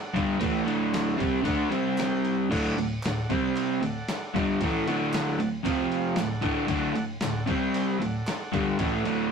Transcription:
0.00 0.25 A4 medium
0.00 0.25 D5 medium
0.00 0.25 F#5 medium
0.14 0.39 G2 medium
0.14 0.40 D3 loud
0.14 0.40 G3 loud
0.14 kick loud
0.14 ride medium
0.39 0.64 A2 loud
0.39 0.65 E3 loud
0.39 0.66 A3 loud
0.39 0.77 D5 loud
0.39 kick loud
0.39 ride loud
0.43 0.78 A4 loud
0.43 0.78 F#5 loud
0.65 1.17 D2 medium
0.65 1.18 A2 loud
0.65 1.18 D3 medium
0.65 ride medium
0.94 1.30 A4 medium
0.94 1.30 D5 medium
0.94 1.31 F#5 loud
0.94 snare loud
0.94 clap medium
0.94 ride loud
1.18 1.44 C3 loud
1.18 1.42 G3 loud
1.18 1.44 C4 medium
1.18 kick loud
1.18 ride medium
1.42 1.69 D3 medium
1.42 1.70 A3 loud
1.42 1.71 D4 loud
1.42 1.64 D5 medium
1.42 ride loud
1.47 1.64 A4 medium
1.47 1.64 F#5 loud
1.47 kick loud
1.70 2.48 C3 loud
1.70 2.49 G3 loud
1.70 2.49 C4 loud
1.70 ride medium
1.77 2.37 G4 medium
1.77 2.37 C5 medium
1.77 2.38 G5 medium
1.98 snare loud
1.98 clap medium
1.98 ride loud
2.25 ride medium
2.50 2.75 D2 loud
2.50 2.76 A2 loud
2.50 2.76 D3 loud
2.50 2.88 D5 loud
2.50 kick loud
2.50 crash loud
2.54 2.88 A4 loud
2.54 2.88 F#5 loud
2.77 2.98 D2 medium
2.77 2.98 A2 medium
2.77 ride medium
3.03 3.25 D2 medium
3.03 3.25 A2 medium
3.03 3.30 A4 medium
3.03 3.30 D5 medium
3.03 3.31 F#5 medium
3.03 snare loud
3.03 clap medium
3.03 ride loud
3.30 3.81 C3 medium
3.30 3.81 G3 medium
3.30 3.82 C4 loud
3.30 3.73 G4 medium
3.30 3.73 G5 loud
3.30 kick loud
3.30 ride medium
3.34 3.73 C5 medium
3.56 clap medium
3.56 ride loud
3.81 4.02 D2 medium
3.81 4.02 A2 medium
3.81 4.45 A4 medium
3.81 4.45 D5 medium
3.81 4.45 F#5 medium
3.81 ride medium
4.08 snare loud
4.08 clap medium
4.08 ride loud
4.34 4.59 G2 medium
4.34 4.60 D3 loud
4.34 4.60 G3 loud
4.34 kick loud
4.34 ride medium
4.61 4.86 A2 loud
4.61 4.86 E3 loud
4.61 4.87 A3 loud
4.61 4.98 A4 loud
4.61 4.97 D5 medium
4.61 4.97 F#5 loud
4.61 kick loud
4.61 ride loud
4.87 5.37 D2 medium
4.87 5.38 A2 medium
4.87 5.39 D3 loud
4.87 ride medium
5.13 5.49 A4 medium
5.13 5.49 D5 medium
5.13 5.49 F#5 medium
5.13 snare loud
5.13 clap loud
5.13 ride loud
5.39 5.60 D2 medium
5.39 5.60 A2 medium
5.39 ride medium
5.63 6.16 F2 loud
5.63 6.16 C3 loud
5.63 6.17 F3 loud
5.63 5.83 F4 medium
5.63 5.83 C5 medium
5.63 kick loud
5.63 clap medium
5.63 ride loud
5.68 5.84 F5 loud
5.92 6.10 F4 medium
5.92 6.10 C5 medium
5.92 6.10 F5 medium
5.92 ride medium
6.16 6.38 D2 medium
6.16 6.38 A2 medium
6.16 6.53 A4 medium
6.16 6.54 D5 medium
6.16 6.54 F#5 loud
6.16 snare loud
6.16 clap medium
6.16 ride loud
6.41 6.66 D2 medium
6.41 6.67 A2 medium
6.41 6.67 D3 loud
6.41 kick loud
6.41 ride medium
6.65 6.93 D2 loud
6.65 6.94 A2 loud
6.65 6.95 D3 loud
6.65 7.05 A4 loud
6.65 7.03 D5 loud
6.65 7.05 F#5 loud
6.65 kick loud
6.65 ride loud
6.94 7.16 D2 medium
6.94 7.17 A2 medium
6.94 ride medium
7.21 7.43 D2 medium
7.21 7.44 A2 medium
7.21 7.50 A4 medium
7.21 7.50 D5 medium
7.21 7.49 F#5 loud
7.21 snare loud
7.21 clap loud
7.21 ride loud
7.46 7.98 C3 medium
7.46 8.00 G3 loud
7.46 8.00 C4 loud
7.46 7.91 G4 loud
7.46 7.92 C5 medium
7.46 7.91 G5 loud
7.46 kick loud
7.46 ride medium
7.74 clap medium
7.74 ride loud
7.99 8.21 D2 medium
7.99 8.22 A2 medium
7.99 8.64 A4 medium
7.99 ride medium
8.03 8.66 D5 medium
8.03 8.66 F#5 medium
8.27 snare loud
8.27 clap medium
8.27 ride loud
8.52 8.78 G2 medium
8.52 8.79 D3 loud
8.52 8.79 G3 loud
8.52 kick loud
8.52 ride medium
8.78 9.05 A2 loud
8.78 9.06 E3 loud
8.78 9.06 A3 loud
8.78 9.16 A4 loud
8.78 9.17 D5 loud
8.78 9.16 F#5 loud
8.78 kick loud
8.78 ride loud
9.05 9.32 D2 loud
9.05 9.32 A2 medium
9.05 9.32 D3 loud
9.05 ride medium

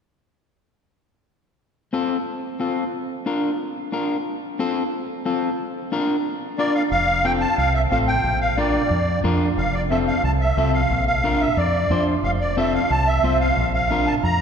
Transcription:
1.93 2.16 C4 medium
1.93 2.16 F4 medium
1.93 2.17 A4 medium
2.60 2.83 C4 medium
2.60 2.83 F4 medium
2.60 2.83 A4 medium
3.26 3.49 D4 medium
3.26 3.50 F4 medium
3.26 3.50 A#4 medium
3.92 4.16 D4 medium
3.92 4.16 F4 medium
3.92 4.16 A#4 medium
4.59 4.82 C4 medium
4.59 4.83 F4 medium
4.59 4.83 A4 medium
5.25 5.49 C4 medium
5.25 5.49 F4 medium
5.25 5.49 A4 medium
5.92 6.15 D4 medium
5.92 6.15 F4 medium
5.92 6.16 A#4 medium
6.58 6.82 D4 medium
6.58 6.82 F4 medium
6.58 6.82 A#4 medium
6.58 6.74 D5 medium
6.75 6.82 F5 medium
6.91 7.45 F1 medium
6.91 7.26 F5 loud
7.25 7.48 C4 medium
7.25 7.48 F4 medium
7.25 7.48 A4 medium
7.25 7.32 G5 medium
7.41 7.57 A5 medium
7.58 7.85 C2 medium
7.58 7.73 F5 medium
7.74 7.82 E5 medium
7.91 8.18 A1 medium
7.91 8.15 C4 medium
7.91 8.15 F4 medium
7.91 8.15 A4 medium
7.91 7.99 F5 medium
8.08 8.39 G5 medium
8.24 8.77 A#1 loud
8.41 8.58 F5 medium
8.57 8.81 D4 medium
8.57 8.81 F4 medium
8.57 8.81 A#4 medium
8.57 9.20 D5 medium
8.90 9.17 F2 medium
9.24 9.51 F2 medium
9.24 9.47 D4 medium
9.24 9.48 F4 medium
9.24 9.48 A#4 medium
9.57 10.10 F1 loud
9.57 9.75 F5 medium
9.74 9.82 D5 medium
9.91 10.14 C4 medium
9.91 10.14 F4 medium
9.91 10.14 A4 medium
9.91 9.98 E5 medium
10.07 10.23 F5 medium
10.24 10.50 C2 medium
10.24 10.32 A5 medium
10.41 10.72 E5 medium
10.57 10.84 C2 loud
10.57 10.81 C4 medium
10.57 10.81 F4 medium
10.57 10.81 A4 medium
10.74 11.05 F5 medium
10.91 11.44 A#1 loud
11.07 11.42 F5 medium
11.24 11.47 D4 medium
11.24 11.47 F4 medium
11.24 11.48 A#4 medium
11.41 11.58 E5 medium
11.57 11.84 F2 medium
11.57 12.04 D5 medium
11.90 12.17 F2 loud
11.90 12.14 D4 medium
11.90 12.14 F4 medium
11.90 12.14 C5 medium
12.23 12.77 F1 loud
12.23 12.31 F5 medium
12.41 12.56 D5 medium
12.57 12.80 C4 medium
12.57 12.81 F4 medium
12.57 12.81 A4 medium
12.57 12.73 E5 medium
12.74 12.91 F5 medium
12.90 13.17 C2 medium
12.90 13.08 A5 medium
13.07 13.38 E5 medium
13.24 13.50 C2 medium
13.24 13.47 C4 medium
13.24 13.47 F4 medium
13.24 13.47 C5 medium
13.41 13.72 F5 medium
13.57 14.10 A#1 loud
13.74 14.08 F5 medium
13.91 14.14 D4 medium
13.91 14.14 F4 medium
13.91 14.14 A#4 medium
14.07 14.14 A5 medium
14.23 14.41 F2 medium
14.23 14.41 A#5 medium

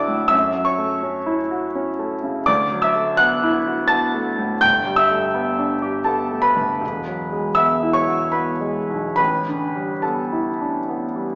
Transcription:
0.00 0.29 D2 soft
0.00 0.35 F#3 soft
0.00 0.34 A3 soft
0.00 0.35 D4 soft
0.00 0.35 E4 soft
0.00 0.35 F#4 soft
0.00 0.29 D5 soft
0.00 0.29 E5 soft
0.00 0.35 F#5 medium
0.00 0.35 A5 medium
0.00 0.31 D6 medium
0.00 0.28 E6 medium
0.00 0.35 F#6 medium
0.00 0.35 A6 medium
0.08 0.32 A2 soft
0.28 2.44 F#2 soft
0.28 0.64 E5 medium
0.28 0.66 E6 medium
0.55 0.94 F#3 soft
0.65 1.35 C#5 soft
0.65 1.38 C#6 medium
0.78 1.18 A3 soft
1.03 1.42 C#4 soft
1.26 1.65 E4 soft
1.51 1.90 F#4 soft
1.75 2.14 C#4 soft
1.99 2.38 A3 soft
2.24 2.48 C#3 soft
2.46 4.58 D2 soft
2.46 2.81 D5 medium
2.46 2.83 D6 medium
2.72 3.11 F#3 soft
2.82 3.17 E5 medium
2.82 3.19 E6 medium
2.96 3.34 A3 soft
3.17 3.58 B3 soft
3.17 3.86 F#5 medium
3.17 3.90 F#6 medium
3.43 3.82 E4 soft
3.67 4.05 F#4 soft
3.88 4.29 B3 soft
3.88 4.57 A5 medium
3.88 4.61 A6 medium
4.14 4.53 A3 soft
4.38 4.62 A2 soft
4.61 6.78 G1 soft
4.61 4.96 G5 medium
4.61 4.98 G6 medium
4.87 5.25 G3 soft
4.96 6.04 E5 medium
4.96 6.07 E6 medium
5.11 5.50 A3 soft
5.35 5.74 B3 soft
5.59 5.98 D4 soft
5.82 6.22 G4 soft
6.04 6.47 B3 soft
6.04 6.41 A4 soft
6.04 6.43 A5 medium
6.31 6.72 A3 soft
6.42 7.53 B4 medium
6.42 7.56 B5 medium
6.56 6.82 D2 soft
6.81 9.14 E1 soft
7.07 7.48 F#3 soft
7.32 7.73 G#3 soft
7.55 7.99 B3 soft
7.55 7.93 E5 medium
7.55 7.95 E6 medium
7.83 8.25 E4 soft
7.93 8.32 C#5 medium
7.93 8.34 C#6 medium
8.08 8.51 F#4 soft
8.32 8.78 B3 soft
8.32 9.13 B4 soft
8.32 9.14 B5 medium
8.61 9.06 G#3 soft
8.90 9.19 B1 soft
9.16 11.35 A1 soft
9.16 9.99 B4 medium
9.16 10.02 B5 medium
9.48 9.93 D3 soft
9.76 10.21 G3 soft
10.02 10.49 B3 soft
10.02 11.26 A4 soft
10.02 11.29 A5 soft
10.32 10.77 E4 soft
10.61 11.05 D4 soft
10.89 11.33 B3 soft
11.16 11.35 G3 soft

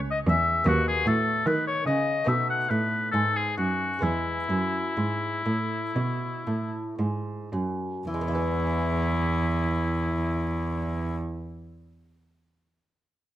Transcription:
0.00 0.25 C#2 medium
0.00 0.62 C#4 soft
0.00 0.63 A4 soft
0.11 0.19 D#5 medium
0.27 0.64 E2 medium
0.27 0.69 E5 medium
0.64 1.03 D#2 medium
0.64 1.03 D#2 soft
0.64 2.23 B3 soft
0.64 2.24 F#4 soft
0.64 0.87 F#4 medium
0.88 1.09 G#4 medium
1.06 1.43 A2 medium
1.06 1.48 A4 medium
1.46 1.84 D#3 medium
1.46 1.83 D#3 soft
1.46 1.67 B4 medium
1.67 1.86 C#5 medium
1.86 2.25 C#3 medium
1.86 2.24 C#3 soft
1.86 2.30 D#5 medium
2.24 2.67 B2 medium
2.24 3.97 A3 soft
2.24 3.98 B3 soft
2.24 3.98 D#4 soft
2.29 2.67 B2 soft
2.29 2.49 E5 medium
2.50 2.71 F#5 medium
2.70 3.10 A2 medium
2.70 3.10 A2 soft
2.70 3.11 B4 medium
3.12 3.54 G#2 medium
3.12 3.54 G#2 soft
3.12 3.38 A4 medium
3.36 3.56 G#4 medium
3.57 3.99 F#2 soft
3.57 4.00 F#2 medium
3.57 4.04 F#4 medium
3.99 4.46 G#3 soft
3.99 4.47 B3 soft
3.99 8.03 E4 soft
3.99 6.99 E4 medium
4.03 4.46 E2 medium
4.03 4.46 E2 soft
4.49 4.94 F#2 medium
4.49 4.93 F#2 soft
4.97 5.42 G#2 soft
4.97 5.43 G#2 medium
5.46 5.91 A2 soft
5.46 5.92 A2 medium
5.96 6.43 B2 soft
5.96 6.43 B2 medium
6.47 6.95 A2 soft
6.47 6.96 A2 medium
6.99 7.49 G#2 soft
6.99 7.49 G#2 medium
7.53 8.03 F#2 soft
7.53 8.04 F#2 medium
8.07 11.17 E2 medium
8.07 11.16 E3 soft
8.07 11.17 E4 medium
8.14 11.23 G#3 soft
8.21 11.30 B3 soft
8.28 11.37 E4 soft
8.35 11.44 B4 soft

